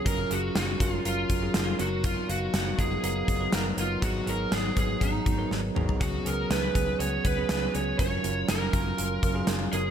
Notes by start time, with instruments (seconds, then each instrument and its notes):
0.04 fingered electric bass F#1, tine electric piano F#3 C#4 F4 A#4, lead electric guitar A#4, kick, closed hi-hat
0.30 fingered electric bass F#1, tine electric piano F#3 C#4 F4 G#4, lead electric guitar F#4, closed hi-hat
0.55 fingered electric bass F#1, lead electric guitar F#4, snare, closed hi-hat
0.79 fingered electric bass F#1, tine electric piano F#3 C#4 F4 A#4, kick, closed hi-hat
0.90 lead electric guitar F4
1.05 fingered electric bass F#1, tine electric piano F#3 C#4 F4 A#4, lead electric guitar F4, closed hi-hat
1.30 fingered electric bass F#1, kick, closed hi-hat
1.42 tine electric piano F#3 C#4 F4 G#4
1.54 fingered electric bass F#1, snare, closed hi-hat
1.79 fingered electric bass F#1, tine electric piano F#3 B3 D#4 A#4, lead electric guitar F#4, closed hi-hat
2.04 lead electric guitar F4, kick, closed hi-hat
2.28 fingered electric bass F#1, tine electric piano F#3 B3 D#4 F5, lead electric guitar F#4, closed hi-hat
2.54 fingered electric bass F#1, snare, closed hi-hat
2.78 fingered electric bass F#1, tine electric piano F#3 B3 D#4 F4, lead electric guitar G#4, kick, closed hi-hat
3.03 fingered electric bass F#1, tine electric piano F#3 B3 D#4 A#4, lead electric guitar G#4, closed hi-hat
3.28 fingered electric bass F#1, kick, closed hi-hat
3.39 tine electric piano F#3 B3 D#4 B4
3.52 fingered electric bass F#1, lead electric guitar A#4, snare, closed hi-hat
3.77 fingered electric bass F#1, tine electric piano F#3 B3 D#4 A#4, lead electric guitar F4, closed hi-hat
4.01 fingered electric bass G#1, tine electric piano F#3 B3 D#4 G#4, lead electric guitar F#4, kick, closed hi-hat
4.26 fingered electric bass G#1, tine electric piano F#3 B3 D#4 G#4, lead electric guitar A#4, closed hi-hat
4.51 fingered electric bass G#1, lead electric guitar G#4, snare, closed hi-hat
4.75 fingered electric bass G#1, tine electric piano F#3 B3 D#4 B4, lead electric guitar G#4, kick, closed hi-hat
5.00 fingered electric bass G#1, tine electric piano F#3 B3 D#4 G#4, lead electric guitar D#4, kick, closed hi-hat
5.26 fingered electric bass G#1, kick, closed hi-hat
5.38 tine electric piano F#3 B3 D#4 A#4
5.51 fingered electric bass G#1, snare
5.75 fingered electric bass G#1, tine electric piano F#3 B3 D#4 G#4, mid tom
5.89 floor tom
6.00 fingered electric bass C#2, tine electric piano F#3 B3 C#4 G#4, lead electric guitar F#4, kick, closed hi-hat
6.25 fingered electric bass C#2, tine electric piano F#3 B3 C#4 G#4, lead electric guitar A#4, closed hi-hat
6.50 fingered electric bass C#2, lead electric guitar B4, snare, closed hi-hat
6.74 fingered electric bass C#2, tine electric piano F#3 B3 C#4 G#4, kick, closed hi-hat
6.99 fingered electric bass C#2, tine electric piano F#3 B3 C#4 G#4, lead electric guitar C#5, closed hi-hat
7.25 fingered electric bass C#2, lead electric guitar B4, kick, closed hi-hat
7.37 tine electric piano F#3 B3 C#4 G#4
7.49 fingered electric bass C#2, snare, closed hi-hat
7.73 fingered electric bass C#2, tine electric piano F#3 B3 C#4 G#4, lead electric guitar C#5, closed hi-hat
7.99 fingered electric bass F#1, tine electric piano F#3 C#4 F4 A#4, lead electric guitar C#5, kick, closed hi-hat
8.23 fingered electric bass F#1, tine electric piano F#3 C#4 F4 A#4, closed hi-hat
8.48 fingered electric bass F#1, lead electric guitar A#4, snare, closed hi-hat
8.72 fingered electric bass F#1, tine electric piano F#3 C#4 F4 A#4, kick, closed hi-hat
8.97 fingered electric bass F#1, tine electric piano F#3 C#4 F4 A#4, closed hi-hat
9.23 fingered electric bass F#1, kick, closed hi-hat
9.34 tine electric piano F#3 C#4 F4 G#4
9.47 fingered electric bass F#1, snare, closed hi-hat
9.72 fingered electric bass F#1, tine electric piano F#3 B3 D#4 A#4, lead electric guitar G#4, closed hi-hat